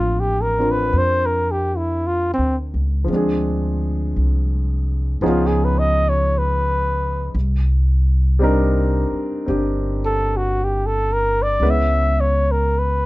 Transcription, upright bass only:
0.00 0.90 A1 medium
0.93 2.33 F2 medium
2.38 2.71 D2 soft
2.74 3.07 C#2 medium
3.08 4.12 D2 medium
4.16 5.19 C2 medium
5.21 7.30 C#2 medium
7.35 9.08 C2 medium
9.11 muted upright bass stroke soft
9.48 11.57 G1 medium
11.60 13.06 C#2 medium

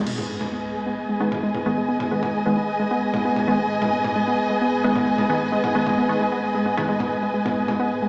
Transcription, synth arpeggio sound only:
0.07 0.10 G#3 medium
0.18 0.22 B3 medium
0.41 0.45 G#3 medium
0.52 0.56 B3 medium
0.75 0.79 G#3 medium
0.86 0.90 B3 medium
1.09 1.13 G#3 medium
1.20 1.24 B3 medium
1.43 1.47 G#3 medium
1.55 1.58 B3 medium
1.77 1.81 G#3 medium
1.89 1.92 B3 medium
2.11 2.15 G#3 medium
2.23 2.26 B3 medium
2.46 2.49 G#3 medium
2.57 2.60 B3 medium
2.80 2.83 G#3 medium
2.91 2.95 B3 medium
3.14 3.17 G#3 medium
3.25 3.29 B3 medium
3.48 3.51 G#3 medium
3.59 3.63 B3 medium
3.82 3.86 G#3 medium
3.93 3.97 B3 medium
4.16 4.20 G#3 medium
4.27 4.31 B3 medium
4.50 4.54 G#3 medium
4.61 4.65 B3 medium
4.84 4.88 G#3 medium
4.96 4.99 B3 medium
5.18 5.22 G#3 medium
5.29 5.33 B3 medium
5.52 5.56 G#3 medium
5.64 5.67 B3 medium
5.87 5.90 G#3 medium
5.98 6.01 B3 medium
6.20 6.24 G#3 medium
6.32 6.35 B3 medium
6.55 6.58 G#3 medium
6.66 6.70 B3 medium
6.89 6.92 G#3 medium
7.00 7.04 B3 medium
7.23 7.26 G#3 medium
7.34 7.38 G#3 medium
7.46 7.55 B3 medium
7.68 7.72 G#3 medium
7.80 7.89 B3 medium
8.02 8.06 G#3 medium

